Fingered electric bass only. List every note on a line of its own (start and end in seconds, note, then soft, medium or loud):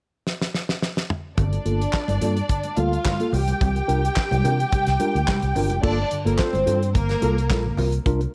1.38 1.57 G1 medium
1.66 1.85 G1 medium
2.08 2.17 G1 medium
2.21 2.40 G2 medium
2.77 2.96 D2 medium
3.33 3.52 C2 loud
3.61 3.80 C2 medium
3.89 4.08 C2 medium
4.32 4.40 C2 medium
4.45 4.64 C3 medium
4.87 4.96 C2 medium
5.15 5.24 D2 medium
5.43 5.52 C2 loud
5.56 5.70 G1 medium
5.70 5.79 F1 medium
5.84 6.03 G1 loud
6.26 6.35 G1 loud
6.54 6.63 G1 medium
6.67 6.97 G2 medium
6.95 7.14 G1 medium
7.23 7.50 C2 medium
7.50 7.69 A#1 medium
7.78 7.97 C2 medium
8.06 8.25 C2 loud